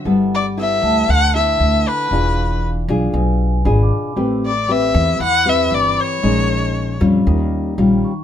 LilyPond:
<<
  \new Staff \with { instrumentName = "Vibraphone" } { \time 4/4 \key e \minor \tempo 4 = 117 fis''4. a''4.~ a''16 r8. | f''4.~ f''16 r16 gis''4 b''16 d'''8.~ | d'''8. r4 r16 b''4.~ b''16 r16 | r2. r8 des'''8 | }
  \new Staff \with { instrumentName = "Erhu" } { \time 4/4 \key e \minor r8 d''8 e''4 fis''8 e''4 b'8~ | b'4 r2. | r8 d''8 e''4 fis''8 e''8 d''8 cis''8~ | cis''4. r2 r8 | }
  \new Staff \with { instrumentName = "Nylon-string guitar" } { \time 4/4 \key e \minor << { <b e' a'>8 r8 <b e' a'>4 r8 <b e' a'>4. | <d' f' gis'>4. <d' f' gis'>4. <d' f' gis'>4 | <c' g' b'>8 r8 <c' g' b'>4 r8 <c' g' b'>4. | <aes des' ees'>4. <g des' f'>4. <g des' f'>8 r8 | } \\ { g2 d2 | e2 b,2 | a2 e2 | bes,2 ees2 | } >> }
  \new Staff \with { instrumentName = "Upright bass" } { \clef bass \time 4/4 \key e \minor g,,4. d,8 d,4 d,8 r8 | e,,4. b,,8 b,,4 gis,,8 r8 | a,,4. e,8 e,4 g,,8 r8 | bes,,4. f,8 ees,4 bes,,8 r8 | }
>>